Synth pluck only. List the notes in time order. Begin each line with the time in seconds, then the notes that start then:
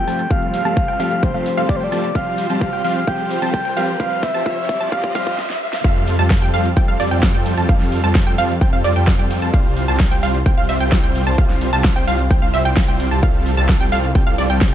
0.08 A5
0.31 F5
0.65 A5
0.88 G5
1.00 F5
1.23 G5
1.34 F5
1.57 F5
1.81 G5
1.92 A5
2.15 F5
2.50 A5
2.73 G5
2.85 F5
3.08 F5
3.42 A5
3.65 G5
3.77 F5
4.00 F5
4.34 A5
4.46 F4
4.81 A5
4.92 F5
5.15 F5
5.84 F5
6.19 A5
6.42 G5
6.54 F5
6.77 G5
6.88 F5
7.00 D5
7.11 G5
7.34 G5
7.58 A5
7.69 F5
8.04 A5
8.27 G5
8.38 F5
8.61 G5
8.73 F5
8.84 D5
8.96 G5
9.19 G5
9.42 A5
9.54 F5
9.88 A5
10.11 G5
10.23 F5
10.46 G5
10.58 F5
10.69 E5
10.80 G5
11.04 G5
11.27 A5
11.38 F5
11.73 A5
11.96 G5
12.07 F5
12.31 G5
12.42 F5
12.54 E5
12.65 G5
12.88 G5
13.11 A5
13.23 F5
13.57 A5
13.81 G5
13.92 F5
14.15 G5
14.27 F5
14.38 D5
14.50 G5